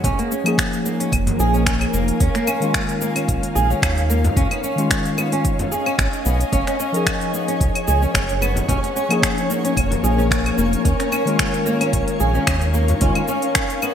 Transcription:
Already playing: G#4 C#5
0.04 A#1 A#3 C#4, kick, open hi-hat, frame drum, cabasa
0.19 A#3, open hi-hat, cabasa
0.31 C#4, cabasa
0.38 A#4
0.44 F3 A#3 D#4, open hi-hat, cabasa, claves
0.48 G#4 G#5
0.58 finger snap, kick, open hi-hat, cabasa
0.73 open hi-hat, cabasa
0.86 A#3, cabasa
1.00 C#4 F5, open hi-hat, cabasa
1.12 F1, kick, open hi-hat, cabasa, claves
1.27 open hi-hat, frame drum, cabasa
1.38 A#1 F3 A#3 D#4 G#4, cabasa
1.54 C#4, cabasa
1.66 C#4, finger snap, kick, open hi-hat, cabasa
1.81 open hi-hat, cabasa, claves
1.94 F1 A#3, cabasa
2.08 open hi-hat, cabasa
2.20 D#2 C#4 D#4, kick, open hi-hat, cabasa
2.35 A#3, finger snap, open hi-hat, cabasa
2.47 C#4, cabasa, claves
2.60 D#3 G#3 C#4 F4, open hi-hat, cabasa
2.74 finger snap, kick, open hi-hat, cabasa
2.89 open hi-hat, cabasa
3.01 A#3 C#5, cabasa
3.16 C#4, open hi-hat, cabasa, claves
3.28 A#1, kick, open hi-hat, cabasa
3.43 open hi-hat, cabasa
3.55 A#1 G#4, cabasa
3.70 C#4, cabasa
3.82 D#2 C#4, finger snap, kick, open hi-hat, cabasa, claves
3.98 open hi-hat, cabasa
4.10 A#3, cabasa
4.24 open hi-hat, frame drum, cabasa
4.36 C#2 C#4, kick, open hi-hat, frame drum, cabasa
4.51 B3, open hi-hat, cabasa, claves
4.64 C#4, cabasa
4.76 D#3 G#3 C#4, open hi-hat, cabasa
4.80 F4 D#5
4.90 G#5, finger snap, kick, open hi-hat, cabasa
5.05 open hi-hat, cabasa
5.18 B3, cabasa, claves
5.32 C#4, open hi-hat, cabasa
5.45 kick, open hi-hat, cabasa
5.59 open hi-hat, frame drum, cabasa
5.72 G#4, cabasa
5.86 C#4, cabasa, claves
5.99 G#1 C#4, finger snap, kick, open hi-hat, cabasa
6.13 open hi-hat, cabasa
6.26 B1 B3, cabasa
6.41 open hi-hat, cabasa
6.52 F#1 C#4 G#4 C#5, kick, open hi-hat, cabasa
6.67 C#4, finger snap, open hi-hat, cabasa
6.80 C#4, cabasa
6.92 F3 D#4 A#4, open hi-hat, cabasa
6.96 G#4
7.06 finger snap, kick, open hi-hat, cabasa, claves
7.21 open hi-hat, cabasa
7.33 B3, cabasa
7.48 C#4 F#5, open hi-hat, cabasa
7.60 C#2, kick, open hi-hat, cabasa
7.75 open hi-hat, cabasa, claves
7.88 C#2 G#4, cabasa
8.02 C#4, cabasa
8.14 F#1 C#4, finger snap, kick, open hi-hat, cabasa
8.29 open hi-hat, cabasa
8.41 B3, cabasa, claves
8.56 open hi-hat, frame drum, cabasa
8.68 A#1 A#3 C#4, kick, open hi-hat, frame drum, cabasa
8.77 A#4
8.83 C#4 F5, open hi-hat, cabasa
8.96 C#4, cabasa
9.09 F3 A#3 D#4 G#4, open hi-hat, cabasa, claves
9.23 finger snap, kick, open hi-hat, cabasa
9.38 open hi-hat, cabasa
9.42 G#5
9.50 A#3, cabasa
9.64 C#4, open hi-hat, cabasa
9.77 F1, kick, open hi-hat, cabasa, claves
9.91 open hi-hat, frame drum, cabasa
10.02 A#1 F3 A#3 D#4 G#4, cabasa
10.18 C#4, cabasa
10.31 C#4, finger snap, kick, open hi-hat, cabasa
10.46 open hi-hat, cabasa, claves
10.58 F1 A#3, cabasa
10.73 open hi-hat, cabasa
10.85 D#2 C#4 D#4, kick, open hi-hat, cabasa
10.99 C#4, finger snap, open hi-hat, cabasa
11.12 C#4, cabasa, claves
11.25 D#3 G#3 C#4 F4, open hi-hat, cabasa
11.39 finger snap, kick, open hi-hat, cabasa
11.54 open hi-hat, cabasa
11.66 A#3, cabasa
11.81 C#4, open hi-hat, cabasa, claves
11.93 A#1, kick, open hi-hat, cabasa
12.08 open hi-hat, cabasa
12.20 A#1 G#4, cabasa
12.35 C#4, cabasa
12.47 D#2 C#4, finger snap, kick, open hi-hat, cabasa, claves
12.61 open hi-hat, cabasa
12.74 A#3, cabasa
12.88 open hi-hat, frame drum, cabasa
13.01 C#2 D#3 G#3 C#4 F4, kick, open hi-hat, frame drum, cabasa
13.15 C#4, open hi-hat, cabasa, claves
13.28 C#4 D#5, cabasa
13.42 open hi-hat, cabasa
13.55 finger snap, kick, open hi-hat, cabasa
13.70 open hi-hat, cabasa
13.82 B3, cabasa, claves

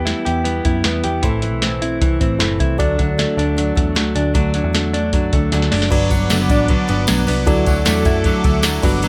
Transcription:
Already playing: E2 B3 E4 G4 B4
0.06 E3 G3 B3 E4, snare, closed hi-hat
0.25 E2 G3 B3 E4 G4, closed hi-hat
0.45 E3 G3 B3 E4, closed hi-hat
0.65 F#2 G3 B3 E4 G4 B4, kick, closed hi-hat
0.84 E2 E3 G3 B3 E4, snare, closed hi-hat
1.03 E2 G3 B3 E4 G4, closed hi-hat
1.23 A1 A2 E3 A3 C4 E4 A4 C5, kick, closed hi-hat
1.42 E3 A3 C4 E4, closed hi-hat
1.53 B1
1.62 A2 E3 A3 C4 E4, snare, closed hi-hat
1.82 A3 C4 E4, closed hi-hat
2.02 C2 E3 A3 C4 E4, kick, closed hi-hat
2.20 A1 A3 C4 E4, kick, closed hi-hat
2.39 F#1 A2 E3 A3 C4 E4 A4 C5, snare, closed hi-hat
2.59 C2 A3 C4 E4, kick, closed hi-hat
2.78 D2 D3 F#3 A3 D4 F#4 A4 D5, kick, closed hi-hat
2.99 D2 F#3 A3 D4 F#4, kick, closed hi-hat
3.18 D3 A3 D4 F#4, snare, closed hi-hat
3.37 D2 A3 D4 F#4, closed hi-hat
3.57 D3 F#3 A3 D4 F#4, closed hi-hat
3.75 E2 A3 D4 F#4, kick, closed hi-hat
3.95 D2 D3 F#3 A3 D4 F#4, snare, closed hi-hat
4.15 D2 A3 D4 F#4, closed hi-hat
4.34 D2 D3 F#3 A3 D4 F#4, kick, closed hi-hat
4.54 F#3 A3 D4 F#4, closed hi-hat
4.64 E2
4.73 D3 A3 D4 F#4, snare, closed hi-hat
4.93 A3 D4 F#4, closed hi-hat
5.13 F#2 D3 F#3 A3 D4 F#4, kick, closed hi-hat
5.33 D2 A3 D4 F#4, kick, closed hi-hat
5.52 D2 D3 F#3 A3 D4 F#4, snare, closed hi-hat
5.62 snare
5.72 F#1 A3 D4 F#4, snare, open hi-hat
5.82 snare
5.90 G1 G2 D3 F#3 G3 B3 D4 F#4 B4 D5 F#5 D6, kick, crash, ride, tambourine
6.10 G1 F#3 B3 D4, kick, ride, tambourine
6.30 F#1 G2 D3 F#3 A3 B3 D4, snare, ride, tambourine
6.41 B3
6.49 A1 F#3 B3 D4, kick, ride, tambourine
6.68 D3 F#3 B3 D4, kick, ride
6.88 G1 F#3 B3 D4, ride, tambourine
7.07 B1 G2 D3 F#3 B3 D4, snare, ride, tambourine
7.26 C2 F#3 B3 D4, open hi-hat, ride, tambourine
7.45 D2 D3 F#3 A3 E4 F#4 A4 D5 E5 F#5 D6, kick, ride, tambourine
7.65 D2 F#3 A3 E4, kick, ride, tambourine
7.85 E2 D3 F#3 A3 E4, snare, ride, tambourine
8.05 F#2 F#3 A3 E4, kick, ride, tambourine
8.24 D3 F#3 A3 E4, kick, ride, tambourine
8.44 D2 F#3 A3 E4, kick, ride, tambourine
8.63 D3 F#3 A3 E4, snare, ride, tambourine
8.82 G1 F#3 G3 B3 D4 F#4 B4 D5, kick, open hi-hat, ride, tambourine
9.02 G2 D3 F#3 B3 D4, ride, tambourine

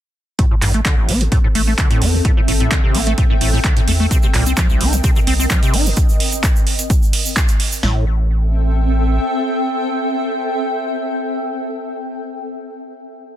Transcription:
0.39 A2 C4, kick, closed hi-hat
0.51 A2
0.62 A1 G2 A4, clap, open hi-hat
0.74 A3, closed hi-hat
0.85 D3, kick, clap, closed hi-hat
0.98 A1
1.09 A1 C4, open hi-hat
1.21 A2, closed hi-hat
1.32 A2, kick, closed hi-hat
1.43 A2 E5
1.55 A1 A3, open hi-hat
1.67 A3
1.78 D3 G5, kick, clap, closed hi-hat
1.91 A2, closed hi-hat
2.02 E2 C4, open hi-hat
2.14 A2
2.25 A2, kick, closed hi-hat
2.37 A2
2.48 A1 A2, open hi-hat
2.60 A2, closed hi-hat
2.71 D3, kick, clap, closed hi-hat
2.84 C3
2.95 A1 C4, open hi-hat
3.07 A3, closed hi-hat
3.18 A2, kick, closed hi-hat
3.30 A2
3.41 A1 A2, open hi-hat
3.53 A2
3.64 D3, kick, clap, closed hi-hat
3.77 A2, closed hi-hat
3.88 E2 A3, open hi-hat
4.00 A3
4.11 C3, kick, closed hi-hat, shaker
4.22 C3 A#4, shaker
4.34 C2 A#2, clap, open hi-hat
4.46 C4, closed hi-hat, shaker
4.57 F3 D#5, kick, clap, closed hi-hat, shaker
4.69 C2, shaker
4.81 C2 D#4, open hi-hat
4.93 C3, closed hi-hat, shaker
5.04 C3, kick, closed hi-hat, shaker
5.16 C3, shaker
5.27 C2 C4, open hi-hat
5.40 C4, shaker
5.50 F3, kick, clap, closed hi-hat, shaker
5.63 C3, closed hi-hat, shaker
5.74 G1 D#4, open hi-hat
5.86 C3, shaker
5.96 kick, closed hi-hat, shaker
6.09 shaker
6.20 open hi-hat
6.32 closed hi-hat, shaker
6.43 kick, clap, closed hi-hat, shaker
6.56 shaker
6.67 open hi-hat
6.79 closed hi-hat, shaker
6.90 kick, closed hi-hat, shaker
7.03 shaker
7.13 open hi-hat
7.26 shaker
7.36 kick, clap, closed hi-hat, shaker
7.48 closed hi-hat, shaker
7.60 open hi-hat
7.72 shaker
7.83 A1 A2 C4, snare
7.90 A4
7.97 E5
8.04 G5

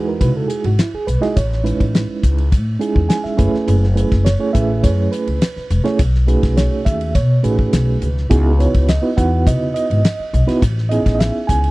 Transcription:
Already playing: E2 G#3 D#4 E4 F#4 B4
0.08 A#4
0.21 C#3 B4, kick, hi-hat pedal, ride
0.36 A4
0.48 G#4, hi-hat pedal, ride
0.64 G#1 F#4, ride
0.79 E4, snare, hi-hat pedal, ride
0.94 G#4, muted upright bass stroke
1.07 B1 B4, hi-hat pedal, ride
1.21 G#3 D#4 E4 F#4 G#4 D#5, muted upright bass stroke, snare, ride
1.36 A1 C#5, kick, hi-hat pedal, ride
1.52 snare
1.64 G#3 C#4 D#4 E4 B4, hi-hat pedal, ride
1.80 A1, kick, ride
1.95 snare, hi-hat pedal, ride
2.23 C#2, kick, hi-hat pedal, ride
2.38 ride
2.52 A2, kick, hi-hat pedal, ride
2.79 G#3 C#4 D#4 E4 G#4, hi-hat pedal, ride
2.96 E2, kick
3.09 G#5, snare, hi-hat pedal, ride
3.24 E5, muted upright bass stroke, snare
3.37 F#1 A3 C#4 E4 G#4 B4, kick, hi-hat pedal, ride
3.53 muted upright bass stroke, snare
3.68 F#1, hi-hat pedal, ride
3.84 snare
3.95 A3 C#4 E4 G#4 B4, hi-hat pedal, ride
4.12 F#1, kick, snare, ride
4.25 C#5, snare, hi-hat pedal, ride
4.39 A3 C#4 E4 G#4 C#5
4.53 A1 A3 C#4 E4 G#4 B4 E5, kick, hi-hat pedal, ride
4.83 F#2 C#5, kick, hi-hat pedal, ride
5.12 B4, hi-hat pedal, ride
5.27 C#2, ride
5.42 snare, hi-hat pedal, ride
5.56 muted upright bass stroke, snare
5.70 E1, hi-hat pedal, ride
5.84 A3 C#4 E4 G#4 C#5, muted upright bass stroke, snare, ride
5.99 B1, kick, hi-hat pedal, ride
6.15 snare
6.27 A3 C#4 D#4 F#4 G#4 B4, hi-hat pedal, ride
6.43 B1, kick, snare, ride
6.57 C#5, snare, hi-hat pedal, ride
6.85 D#2 E5, kick, hi-hat pedal, ride
7.01 ride
7.15 B2 C#5, kick, hi-hat pedal, ride
7.43 A1 A3 C#4 D#4 F#4 G#4 B4, hi-hat pedal, ride
7.59 kick
7.73 B1, snare, hi-hat pedal, ride
8.02 C#2, hi-hat pedal, ride
8.18 snare
8.30 C#2 B3 D#4 E4 F#4 G#4, kick, hi-hat pedal, ride
8.57 B3 D#4 E4 F#4 B4 C#5, hi-hat pedal, ride
8.74 C#2, kick, ride
8.88 D#5, snare, hi-hat pedal, ride
9.01 B3 D#4 E4 F#4 B4
9.16 E2 B3 D#4 E4 F#4 B4 F#5, kick, hi-hat pedal, ride
9.47 C#3 D#5, kick, hi-hat pedal, ride
9.74 D#5, hi-hat pedal, ride
9.90 G#1, ride
10.05 snare, hi-hat pedal, ride
10.19 muted upright bass stroke
10.33 B1, hi-hat pedal, ride
10.47 B3 D#4 E4 F#4 B4, snare, ride
10.62 A1, kick, hi-hat pedal, ride
10.78 snare
10.89 B3 C#4 D#4 E4 G#4 D#5, hi-hat pedal, ride
11.06 A1, kick, snare, ride
11.15 D#5
11.19 E5, snare, hi-hat pedal, ride
11.47 C#2 G#5, kick, hi-hat pedal, ride
11.64 ride

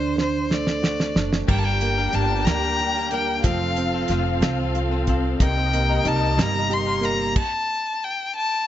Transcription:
Already playing: D2 D3 D4 C5
0.16 C5, snare
0.21 C5
0.50 A3 D5, snare
0.67 snare
0.83 F#4, snare
1.00 snare
1.16 F#1 D4, snare
1.33 snare
1.46 G1 G2 D3 G3 A#3 D4 G4 A#4 G5, kick, crash
1.50 G5
1.58 A5
1.64 G3 A#3 D4 A#4 G5
1.81 A#3, closed hi-hat
1.98 G3 A#3 D4 A#4
2.13 G1 G3 A#3 D4 A#4 A5, closed hi-hat
2.45 D2 G2 D3 G3 A#3 D4 A#4 A#5, snare, closed hi-hat
2.63 G3 A#3 D4 A#4
2.79 G4, closed hi-hat
2.95 G3 A#3 D4 A#4
3.11 G3 A#3 D4 A#4 G5, closed hi-hat
3.44 F1 F3 C4 F4 A4 F5, kick, closed hi-hat
3.60 C4 F4 A4
3.76 C4, closed hi-hat
3.94 C4 F4 A4
4.08 F1 F3 C4 F4 A4, snare, closed hi-hat
4.41 C2 F3 C4 F4 A4, snare, closed hi-hat
4.59 C4 F4 A4
4.75 A4, closed hi-hat
4.91 C4 F4 A4
5.07 F3 C4 F4 A4, kick, closed hi-hat
5.39 C2 C3 G3 A#3 D#4 G4 A#4 D#5, kick, closed hi-hat
5.43 G5
5.57 A#3 D#4 A#4
5.73 A#3, closed hi-hat
5.89 A#3 D#4 A#4
6.04 C2 G3 A#3 D#4 A#4 A5, closed hi-hat
6.38 G1 C3 G3 A#3 D#4 A#4 A#5, snare, closed hi-hat
6.54 A#3 D#4 A#4
6.70 G4 C6, closed hi-hat
6.87 A#3 D#4 A#4
7.02 G3 A#3 D#4 A#4 A#5, closed hi-hat
7.36 A5, kick, crash
8.04 G5
8.36 A5

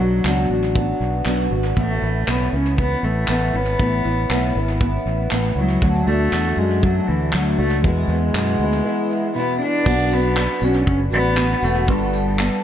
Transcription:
Already playing: F#3
0.00 B1 B3 D4 F#4
0.24 C#2 B2 F#3 B3 D4 F#4, clap
0.50 A1 B3 D4 F#4
0.75 F#3 B3 D4 F#4, kick
1.00 B1
1.25 B1 B2 F#3 B3 D4 F#4, clap
1.50 G#1 B3 D4 F#4
1.76 A1 A2 E3 A3 B3 C#4 E4, kick
2.01 A1 B3 C#4 E4
2.26 B1 A2 E3 B3 C#4 E4, clap
2.52 C#2 B3 C#4 E4
2.77 E3 B3 C#4 E4, kick
3.03 A1 A3
3.28 A1 A2 E3 B3 C#4 E4, clap
3.53 G#1 B3 C#4 E4
3.79 A1 A2 E3 B3 C#4 E4, kick
4.05 A1 B3 C#4 E4
4.30 B1 A2 E3 B3 C#4 E4, clap
4.55 G#1 B3 C#4 E4
4.81 E3 B3 C#4 E4, kick
5.06 A1
5.31 A1 A2 E3 B3 C#4 E4, clap
5.56 C#2 F#3 B3 C#4 E4
5.82 D2 D3 A3 D4 F#4, kick
6.07 D2 A3 D4 F#4
6.31 E2 D3 A3 D4 F#4, clap
6.57 F#2 G#3 A3 D4 F#4
6.82 D3 F#3 A3 D4 F#4, kick
7.08 D2 E3
7.33 D2 D3 F#3 A3 D4 F#4, clap
7.58 C#2 A3 D4 F#4
7.84 E2 B2 E3 G#3 B3 E4, kick
8.08 E2 E3 G#3 B3 E4
8.33 E2 F#2 B2 E3 G#3 B3 E4, clap
8.59 D2 E3 G#3 B3 E4
8.84 E3 G#3 B3 E4
9.34 E2 B2 E3 G#3 B3 E4
9.60 E3 G#3 B3 D4 E4
9.85 B1 B2 F#3 B3 D4 F#4, kick, crash
10.11 B3, tambourine
10.35 F#3 B3 D4 F#4, clap
10.60 B1 B3 D4 F#4, tambourine
10.64 C#4
10.87 F#1 C#4, kick
11.10 A1 B3 D4 F#4, tambourine
11.35 F#3 B3 D4 F#4, clap
11.62 E1 A3, tambourine
11.87 G1 G3 B3 D4 A4, kick
12.13 tambourine
12.38 G3 B3 D4 A4, clap

